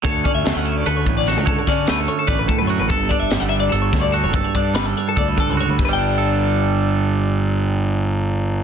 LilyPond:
<<
  \new Staff \with { instrumentName = "Clean electric guitar" } { \time 7/8 \key g \lydian \tempo 4 = 146 a'8 d''16 e''8 fis''16 e''16 d''16 a'16 cis''8 d''16 a'16 cis''16 | a'16 cis''16 d''8 b'16 a'16 cis''16 a'16 d''16 b'16 a'16 b'16 cis''16 b'16 | a'8 d''16 e''8 fis''16 e''16 d''16 a'16 cis''8 d''16 a'16 cis''16 | a'16 cis''16 d''8 b'16 a'16 cis''16 a'16 d''16 b'16 a'16 b'16 cis''16 b'16 |
<b' d'' g''>2.~ <b' d'' g''>8~ | <b' d'' g''>2.~ <b' d'' g''>8 | }
  \new Staff \with { instrumentName = "Clean electric guitar" } { \time 7/8 \key g \lydian << { cis''8 cis'4. b'4 fis'8 | cis''8 cis'4. b'4 fis'8 | a'8 d'4. a'4 fis'8 | a'8 d'4. a'4 fis'8 |
<g d' a'>2.~ <g d' a'>8~ | <g d' a'>2.~ <g d' a'>8 | } \\ { d4 a4. a,4 | d4 a4. a,4 | g,4 g4. d4 | g,4 g4. d4 |
g,2.~ g,8~ | g,2.~ g,8 | } >> }
  \new Staff \with { instrumentName = "Fingered electric bass" } { \clef bass \time 7/8 \key g \lydian d,8 r16 d,16 d,16 d,8. d,8 a,,8. cis,16~ | cis,16 r16 d8 d,8 r8 a,,8 r16 fis,8 a,,16 | g,,8 r16 g,,16 g,,16 g,,8. g,,8 d,8. fis,,16~ | fis,,16 r16 g,8 g,,8 r8 d,8 r16 cis,8 d,16 |
g,,2.~ g,,8~ | g,,2.~ g,,8 | }
  \new DrumStaff \with { instrumentName = "Drums" } \drummode { \time 7/8 <hh bd>8 <hh bd>8 <hh sn>8 hh8 hh8 <hh bd>8 <hh sn>8 | <hh bd>8 <hh bd sn>8 <hh sn>8 hh8 <hh bd sn>8 <hh bd>8 hh8 | <hh bd>8 <hh bd>8 <hh sn>8 hh8 hh8 <hh bd sn>8 hh8 | <hh bd>8 <hh bd>8 <hh sn>8 hh8 <hh bd>8 <hh bd>8 hh8 |
<hho bd>4 r4 r4. | r4 r4 r4. | }
>>